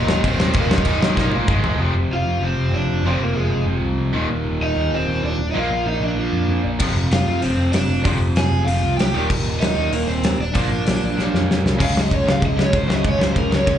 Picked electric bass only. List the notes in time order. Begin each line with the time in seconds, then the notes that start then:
Already playing: D#1
0.24 D#1
0.39 D#1
0.55 D#1
0.86 D#1
1.02 D#1
1.17 A#1
1.49 G#1
1.63 E1
1.78 F1
1.95 F1
2.10 F1
2.25 F2
2.41 F1
2.57 F1
2.72 F1
2.87 F1
3.03 F1
3.19 F1
3.35 F1
3.51 F1
3.66 F1
3.82 C2
3.98 C2
4.14 D#1
4.30 D#1
4.45 D#1
4.61 D#1
4.77 D#2
4.93 D#1
5.09 D#1
5.24 D#1
5.39 D#1
5.55 A#1
5.70 A#1
5.86 A#1
6.01 A#1
6.16 A#1
6.32 F2
6.49 F2
6.65 A#1
6.81 F1
6.95 F1
7.12 F1
7.27 F2
7.43 F1
7.58 F1
7.74 F1
7.89 F1
8.05 F1
8.20 F1
8.35 F1
8.52 F1
8.68 F1
8.83 C2
8.99 C2
9.15 D#1
9.30 D#1
9.46 D#1
9.62 D#1
9.77 D#2
9.93 D#1
10.08 D#1
10.23 D#1
10.40 D#1
10.56 A#1
10.72 A#1
10.88 A#1
11.04 A#1
11.18 A#1
11.34 F2
11.50 F2
11.64 C2
11.80 C#2
11.96 C#2
12.11 C#2
12.28 C#2
12.42 C#2
12.58 C#2
12.73 C#2
12.88 C#2
13.04 C#2
13.19 C#2
13.36 C#2
13.52 C#2
13.67 C#2